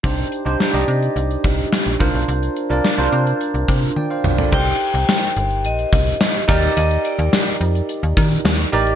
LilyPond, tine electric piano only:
\new Staff \with { instrumentName = "Tine electric piano" } { \time 4/4 \key c \minor \tempo 4 = 107 << { r1 | r2. <d'' g''>16 <c'' f''>8 <a' d''>16~ | <a' d''>16 r2. r8. | r1 | } \\ { <d' ees' g' c''>8. <d' ees' g' c''>8 <ees' g' d'' ees''>4.~ <ees' g' d'' ees''>16 r8 <d' f' bes' c''>8~ | <d' f' bes' c''>8. <d' f' bes' d''>8 <d' f' bes' c''>4.~ <d' f' bes' c''>16 r4 | <ees' g' bes' c''>4.~ <ees' g' bes' c''>16 r4. r16 <ees' g' bes' d''>8~ | <ees' g' bes' d''>4~ <ees' g' bes' d''>16 r2 r16 <ees' g' bes' d''>8 | } >> }